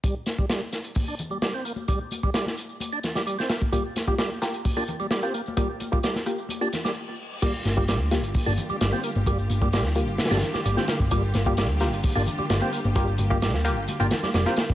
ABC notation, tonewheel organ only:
X:1
M:4/4
L:1/16
Q:1/4=130
K:Gm
V:1 name="Tonewheel organ" clef=bass
G, z2 G, G, z4 D z G, G, C B, z | G, z2 G, G, z4 D z G, G, C B, z | G, z2 G, G, z4 D z G, G, C B, z | G, z2 G, G, z4 D z G, z4 |
G, z2 G, G, z4 D z G, G, C B, z | G, z2 G, G, z4 D z G, G, C B, z | G, z2 G, G, z4 D z G, G, C B, z | G, z2 G, G, z4 D z G, G, C B, z |]